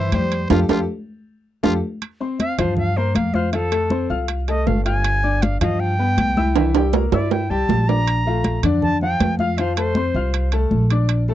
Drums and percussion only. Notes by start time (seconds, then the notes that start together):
0.12 high conga, high timbale
0.32 high timbale
0.50 high conga, high timbale
0.69 high conga, high timbale
1.64 high conga, high timbale
2.02 high conga, high timbale
2.21 high conga
2.40 high conga, high timbale
2.58 high conga, low conga, high timbale
2.77 high conga, low conga
2.96 high conga
3.15 high conga, high timbale
3.34 high conga
3.53 high conga, high timbale
3.72 high conga, high timbale
3.90 high conga
4.28 high conga, high timbale
4.48 high conga, high timbale
4.67 high conga, low timbale
4.86 high timbale
5.04 high conga, high timbale
5.24 high conga
5.42 high conga, high timbale
5.61 high conga, low conga, high timbale
5.80 high conga
5.99 high conga
6.18 high conga, high timbale
6.37 high conga
6.55 high conga, high timbale
6.75 high conga, high timbale
6.93 high conga, low timbale
7.12 low timbale
7.31 high conga, low timbale
7.51 high conga
7.69 high conga, low timbale
7.89 low timbale
8.07 high conga, high timbale
8.26 high conga
8.44 high conga, high timbale
8.63 high conga, low conga, high timbale
8.82 high conga, low conga
9.01 high conga
9.20 high conga, high timbale, low timbale
9.39 high conga
9.57 high conga, high timbale
9.76 high conga, high timbale
9.95 high conga
10.33 high conga, high timbale
10.52 high conga, high timbale
10.71 high conga
10.90 high timbale
11.08 high conga, high timbale
11.28 high conga